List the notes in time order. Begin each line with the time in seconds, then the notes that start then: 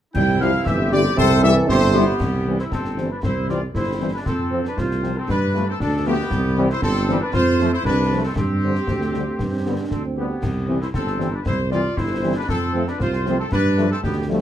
0.14 C2 E3 G3 C4 E4 G5 G6, concert bass drum, crash
0.40 F3 G3 E4 G4 F5 F6, snare
0.65 G1 E3 G4 E5 E6, concert bass drum, snare
0.92 D3 G3 E4 G4 D5 D6, snare
1.04 snare
1.16 C2 C3 A4 C5 C6, concert bass drum
1.43 E3 G3 E4 G4 E5 E6, snare
1.68 G1 C3 C4 G4 A4 C5 C6, concert bass drum
1.94 G3 B3 E4 G4, snare
2.20 C2, concert bass drum, snare, crash
2.46 E3 G3 C4
2.58 E4 C5, snare
2.71 G1 C4 A4, concert bass drum, snare
2.85 snare
2.96 E3 G3 C4, snare
3.10 D4 B4
3.22 C2 E4 C5, concert bass drum, snare
3.48 E3 G3 C4 F4 D5, snare
3.73 G1 E4 C5, concert bass drum, snare
4.00 E3 G3 C4
4.13 D4 B4
4.25 F2 C4 A4, concert bass drum, snare
4.50 F3 C4
4.65 D4 B4, snare
4.77 C2 F4 C5, concert bass drum, snare
4.91 snare
5.01 F3 C4, snare
5.16 C4 A4
5.27 G2 D4 B4, concert bass drum, snare
5.53 F3 A3 B3, snare
5.68 C4 A4
5.79 D2 D4 A4, concert bass drum, snare
6.05 F3 A3 B3 G4
6.30 C2, concert bass drum, snare, crash
6.56 E3 G3 C4
6.70 E4 C5, snare
6.81 G1 C4 A4, concert bass drum, snare
6.95 snare
7.08 E3 G3 C4, snare
7.21 D4 B4
7.33 F2 F4 C5, concert bass drum, snare
7.59 F3 A3 C4, snare
7.72 E4 C5
7.84 C2 D4 B4, concert bass drum, snare
8.12 F3 A3 C4
8.23 C4 A4
8.36 G2 C4 G4, concert bass drum, snare
8.63 D3 G3 C4
8.75 snare
8.87 D2 C4, concert bass drum, snare
9.01 A3, snare
9.13 D3 G3 C4, snare
9.39 G2 B3, concert bass drum, snare
9.52 C4
9.65 D3 G3 B3
9.78 D4
9.90 D2 C4 A4, concert bass drum, snare
10.05 C4
10.16 D3 G3 B3 G4
10.42 C2, concert bass drum, snare, crash
10.67 E3 G3 C4
10.81 E4 C5, snare
10.94 G1 C4 A4, concert bass drum, snare
11.07 snare
11.17 E3 G3 C4, snare
11.32 D4 B4
11.44 C2 E4 C5, concert bass drum, snare
11.70 E3 G3 C4 F4 D5, snare
11.96 G1 E4 C5, concert bass drum, snare
12.22 E3 G3 C4
12.36 D4 B4
12.48 F2 C4 A4, concert bass drum, snare
12.73 F3 A3 C4
12.87 D4 B4, snare
12.99 C2 F4 C5, concert bass drum, snare
13.13 snare
13.26 F3 A3 C4, snare
13.39 C4 A4
13.51 G2 D4 B4, concert bass drum, snare
13.77 F3 G3 A3, snare
13.90 C4 A4
14.01 D2 B3 G4, concert bass drum, snare
14.28 F3 G3 A3